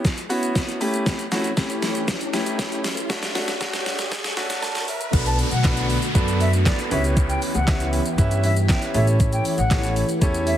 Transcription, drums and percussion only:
0.05 kick, snare, shaker
0.18 closed hi-hat, shaker
0.30 open hi-hat, shaker
0.43 closed hi-hat, shaker
0.55 kick, snare, shaker
0.69 closed hi-hat, shaker
0.81 open hi-hat, shaker
0.94 closed hi-hat, shaker
1.06 kick, snare, shaker
1.19 closed hi-hat, shaker
1.32 snare, open hi-hat, shaker
1.44 closed hi-hat, shaker
1.57 kick, snare, shaker
1.70 closed hi-hat, shaker
1.82 snare, open hi-hat, shaker
1.95 closed hi-hat, shaker
2.08 kick, snare, shaker
2.21 closed hi-hat, shaker
2.33 snare, open hi-hat, shaker
2.46 closed hi-hat, shaker
2.59 kick, snare, shaker
2.72 closed hi-hat, shaker
2.84 snare, open hi-hat, shaker
2.97 closed hi-hat, shaker
3.10 kick, snare, shaker
3.23 snare, closed hi-hat, shaker
3.35 snare, open hi-hat, shaker
3.48 snare, closed hi-hat, shaker
3.61 kick, snare, shaker
3.73 snare, closed hi-hat, shaker
3.86 snare, open hi-hat, shaker
3.99 snare, closed hi-hat, shaker
4.11 kick, snare, shaker
4.24 snare, closed hi-hat, shaker
4.37 snare, open hi-hat, shaker
4.50 snare, closed hi-hat, shaker
4.63 snare, shaker
4.75 snare, closed hi-hat, shaker
4.88 open hi-hat, shaker
5.01 closed hi-hat, shaker
5.13 kick, closed hi-hat, crash, shaker
5.26 closed hi-hat, shaker
5.39 open hi-hat, shaker
5.51 closed hi-hat, shaker
5.64 kick, snare, clap, closed hi-hat, shaker
5.77 closed hi-hat, shaker
5.90 open hi-hat, shaker
6.02 closed hi-hat, shaker
6.15 kick, closed hi-hat, shaker
6.28 closed hi-hat, shaker
6.41 open hi-hat, shaker
6.53 closed hi-hat, shaker
6.66 kick, snare, clap, closed hi-hat, shaker
6.79 closed hi-hat, shaker
6.91 open hi-hat, shaker
7.04 closed hi-hat, shaker
7.17 kick, closed hi-hat, shaker
7.30 closed hi-hat, shaker
7.42 open hi-hat, shaker
7.55 closed hi-hat, shaker
7.68 kick, snare, clap, closed hi-hat, shaker
7.80 closed hi-hat, shaker
7.93 open hi-hat, shaker
8.06 closed hi-hat, shaker
8.18 kick, closed hi-hat, shaker
8.31 closed hi-hat, shaker
8.44 open hi-hat, shaker
8.57 closed hi-hat, shaker
8.69 kick, snare, clap, closed hi-hat, shaker
8.82 closed hi-hat, shaker
8.94 open hi-hat, shaker
9.07 closed hi-hat, shaker
9.20 kick, closed hi-hat, shaker
9.33 closed hi-hat, shaker
9.45 open hi-hat, shaker
9.58 closed hi-hat, shaker
9.71 kick, snare, clap, closed hi-hat, shaker
9.83 closed hi-hat, shaker
9.96 open hi-hat, shaker
10.09 closed hi-hat, shaker
10.22 kick, closed hi-hat, shaker
10.34 closed hi-hat, shaker
10.47 open hi-hat, shaker

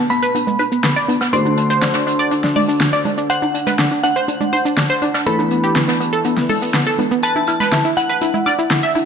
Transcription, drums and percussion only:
0.10 closed hi-hat
0.23 shaker
0.35 closed hi-hat, high conga, shaker
0.47 low conga, shaker
0.59 closed hi-hat, high conga
0.72 shaker
0.84 snare, closed hi-hat, shaker
0.97 shaker
1.08 closed hi-hat, high conga
1.21 snare, high woodblock, shaker
1.33 closed hi-hat, shaker
1.46 high conga, shaker
1.57 closed hi-hat
1.71 shaker
1.81 snare, closed hi-hat, shaker
1.94 snare, shaker
2.07 closed hi-hat
2.20 shaker
2.31 closed hi-hat, high conga, shaker
2.44 snare, shaker
2.56 open hi-hat, high conga, low conga
2.69 shaker
2.81 snare, closed hi-hat, shaker
2.94 shaker
3.05 closed hi-hat, high conga, low conga
3.18 shaker
3.30 closed hi-hat, shaker
3.42 high conga, shaker
3.55 closed hi-hat
3.67 snare, low conga, shaker
3.79 snare, closed hi-hat, shaker
3.92 shaker
4.04 closed hi-hat
4.17 shaker
4.28 closed hi-hat, high conga, shaker
4.41 low conga, shaker
4.53 closed hi-hat, high conga
4.66 shaker
4.77 snare, closed hi-hat, shaker
4.90 shaker
5.02 closed hi-hat, high conga
5.14 snare, high woodblock, shaker
5.26 closed hi-hat, shaker
5.39 high conga, shaker
5.51 closed hi-hat
5.64 shaker
5.75 snare, closed hi-hat, shaker
5.89 snare, shaker
6.01 closed hi-hat
6.13 shaker
6.25 closed hi-hat, high conga, shaker
6.37 snare, shaker
6.49 open hi-hat, high conga, low conga
6.62 shaker
6.74 snare, closed hi-hat, shaker
6.87 shaker
6.99 closed hi-hat, high conga, low conga
7.12 shaker
7.23 closed hi-hat, shaker
7.36 high conga, shaker
7.47 closed hi-hat, high woodblock
7.60 snare, low conga, shaker
7.72 snare, closed hi-hat, shaker
7.85 shaker
7.98 closed hi-hat
8.10 shaker
8.21 closed hi-hat, high conga, shaker
8.34 low conga, shaker
8.46 closed hi-hat, high conga, high woodblock
8.59 shaker
8.70 snare, closed hi-hat, shaker
8.84 shaker
8.95 closed hi-hat, high conga

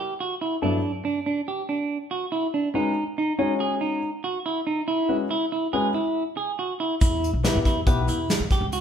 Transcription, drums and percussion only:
7.01 kick, closed hi-hat, shaker
7.24 closed hi-hat
7.44 snare, closed hi-hat, shaker
7.65 kick, snare, closed hi-hat
7.87 kick, closed hi-hat
8.08 closed hi-hat, shaker
8.29 snare, closed hi-hat, shaker
8.51 kick, snare, closed hi-hat
8.72 closed hi-hat

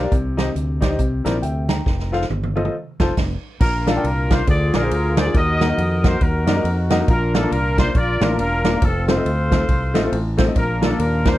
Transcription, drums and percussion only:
0.12 kick, closed hi-hat
0.38 snare, closed hi-hat
0.56 closed hi-hat
0.82 kick, snare, closed hi-hat
0.99 kick, closed hi-hat
1.25 snare, closed hi-hat
1.43 closed hi-hat
1.69 snare, closed hi-hat
1.86 kick, snare
1.99 snare
2.13 snare
2.21 snare
2.30 high tom
2.43 high tom
2.57 high tom
2.65 mid tom
3.00 kick, snare, crash
3.17 kick, snare, crash
3.61 kick, crash
3.87 snare, ride
4.05 ride
4.30 kick, snare, ride
4.47 kick, ride
4.73 snare, ride
4.91 ride
5.17 snare, ride
5.34 kick, ride
5.61 snare, ride
5.78 ride
6.04 kick, snare, ride
6.21 kick, ride
6.47 snare, ride
6.65 ride
6.90 snare, ride
7.08 kick, ride
7.35 snare, ride
7.52 ride
7.78 kick, snare, ride
7.95 kick, ride
8.21 snare, ride
8.39 ride
8.65 snare, ride
8.82 kick, ride
9.08 snare, ride
9.26 ride
9.52 kick, snare, ride
9.69 kick, ride
9.95 snare, ride
10.13 ride
10.38 kick, snare, ride
10.56 kick, ride
10.82 snare, ride
10.99 ride
11.25 kick, snare, ride

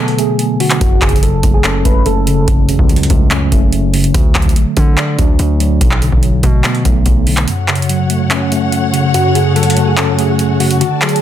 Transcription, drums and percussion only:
0.08 closed hi-hat
0.19 closed hi-hat
0.39 closed hi-hat
0.60 closed hi-hat, open hi-hat
0.71 clap, closed hi-hat
0.81 kick, closed hi-hat
1.02 kick, clap, closed hi-hat
1.09 kick, closed hi-hat
1.16 closed hi-hat
1.23 closed hi-hat
1.43 kick, closed hi-hat
1.64 clap, closed hi-hat
1.85 kick, closed hi-hat
2.06 closed hi-hat
2.27 closed hi-hat
2.48 kick, closed hi-hat
2.69 closed hi-hat
2.79 kick
2.89 closed hi-hat
2.96 closed hi-hat
3.03 closed hi-hat
3.10 kick, closed hi-hat
3.31 clap, closed hi-hat
3.52 kick, closed hi-hat
3.72 closed hi-hat
3.94 closed hi-hat, open hi-hat
4.04 closed hi-hat
4.14 kick, closed hi-hat
4.35 kick, clap, closed hi-hat
4.42 kick, closed hi-hat
4.49 closed hi-hat
4.56 closed hi-hat
4.77 kick, closed hi-hat
4.98 clap, closed hi-hat
5.19 kick, closed hi-hat
5.39 closed hi-hat
5.60 closed hi-hat
5.81 kick, closed hi-hat
5.91 clap
6.02 closed hi-hat
6.12 kick
6.23 closed hi-hat
6.43 kick, closed hi-hat
6.64 clap, closed hi-hat
6.75 closed hi-hat
6.85 kick, closed hi-hat
7.06 kick, closed hi-hat
7.27 closed hi-hat, open hi-hat
7.37 clap, closed hi-hat
7.48 closed hi-hat
7.68 clap, closed hi-hat
7.75 closed hi-hat
7.82 closed hi-hat
7.89 closed hi-hat
8.10 closed hi-hat
8.31 clap, closed hi-hat
8.52 closed hi-hat
8.72 closed hi-hat
8.94 closed hi-hat
9.14 closed hi-hat
9.35 closed hi-hat
9.56 closed hi-hat
9.63 closed hi-hat
9.70 closed hi-hat
9.77 closed hi-hat
9.97 clap, closed hi-hat
10.19 closed hi-hat
10.39 closed hi-hat
10.60 closed hi-hat, open hi-hat
10.71 closed hi-hat
10.81 closed hi-hat
11.02 clap, closed hi-hat
11.09 closed hi-hat
11.16 closed hi-hat

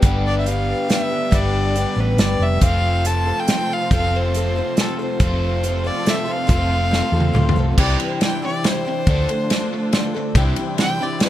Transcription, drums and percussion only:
0.02 kick, closed hi-hat
0.46 closed hi-hat
0.90 snare, closed hi-hat
1.32 kick, closed hi-hat
1.76 closed hi-hat
2.18 snare, closed hi-hat
2.61 kick, closed hi-hat
3.05 closed hi-hat
3.48 snare, closed hi-hat
3.91 kick, closed hi-hat
4.34 closed hi-hat
4.77 snare, closed hi-hat
5.20 kick, closed hi-hat
5.64 closed hi-hat
6.06 snare, closed hi-hat
6.49 kick, closed hi-hat
6.93 snare
7.20 high tom
7.35 mid tom
7.49 mid tom
7.78 kick, crash
8.00 ride
8.21 snare, ride
8.64 snare, ride
9.07 kick, ride
9.29 ride
9.50 snare, ride
9.93 snare, ride
10.35 kick, ride
10.56 ride
10.78 snare, ride
11.20 snare, ride

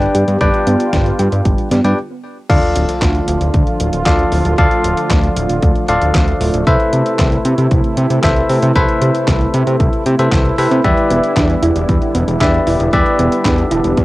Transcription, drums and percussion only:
0.02 closed hi-hat
0.15 closed hi-hat
0.28 closed hi-hat
0.41 kick, closed hi-hat
0.54 closed hi-hat
0.67 closed hi-hat
0.80 closed hi-hat
0.93 kick, snare, closed hi-hat
1.06 closed hi-hat
1.19 closed hi-hat
1.32 closed hi-hat
1.45 kick, closed hi-hat
1.58 closed hi-hat
1.71 snare, closed hi-hat
1.84 closed hi-hat
2.50 kick, closed hi-hat, crash
2.63 closed hi-hat
2.76 closed hi-hat
2.89 closed hi-hat
3.02 kick, snare, clap, closed hi-hat
3.15 closed hi-hat
3.28 closed hi-hat
3.41 closed hi-hat
3.54 kick, closed hi-hat
3.67 closed hi-hat
3.80 closed hi-hat
3.93 closed hi-hat
4.06 kick, snare, clap, closed hi-hat
4.19 closed hi-hat
4.32 open hi-hat
4.45 closed hi-hat
4.58 kick, closed hi-hat
4.71 closed hi-hat
4.84 closed hi-hat
4.97 closed hi-hat
5.10 kick, snare, clap, closed hi-hat
5.23 closed hi-hat
5.36 closed hi-hat
5.49 closed hi-hat
5.62 kick, closed hi-hat
5.76 closed hi-hat
5.88 closed hi-hat
6.02 closed hi-hat
6.15 kick, snare, clap, closed hi-hat
6.28 closed hi-hat
6.41 open hi-hat
6.54 closed hi-hat
6.67 kick, closed hi-hat
6.80 closed hi-hat
6.93 closed hi-hat
7.06 closed hi-hat
7.19 kick, snare, clap, closed hi-hat
7.32 closed hi-hat
7.45 closed hi-hat
7.58 closed hi-hat
7.71 kick, closed hi-hat
7.84 closed hi-hat
7.97 closed hi-hat
8.10 closed hi-hat
8.23 kick, snare, clap, closed hi-hat
8.36 closed hi-hat
8.50 open hi-hat
8.63 closed hi-hat
8.76 kick, closed hi-hat
8.89 closed hi-hat
9.02 closed hi-hat
9.15 closed hi-hat
9.28 kick, snare, clap, closed hi-hat
9.41 closed hi-hat
9.54 closed hi-hat
9.67 closed hi-hat
9.80 kick, closed hi-hat
9.93 closed hi-hat
10.06 closed hi-hat
10.19 closed hi-hat
10.32 kick, snare, clap, closed hi-hat
10.45 closed hi-hat
10.58 open hi-hat
10.71 closed hi-hat
10.84 kick, closed hi-hat
10.97 closed hi-hat
11.10 closed hi-hat
11.24 closed hi-hat
11.37 kick, snare, clap, closed hi-hat
11.50 closed hi-hat
11.63 closed hi-hat
11.76 closed hi-hat
11.89 kick, closed hi-hat
12.02 closed hi-hat
12.15 closed hi-hat
12.28 closed hi-hat
12.41 kick, snare, clap, closed hi-hat
12.54 closed hi-hat
12.67 open hi-hat
12.80 closed hi-hat
12.93 kick, closed hi-hat
13.06 closed hi-hat
13.19 closed hi-hat
13.32 closed hi-hat
13.45 kick, snare, clap, closed hi-hat
13.58 closed hi-hat
13.71 closed hi-hat
13.84 closed hi-hat
13.97 kick, closed hi-hat

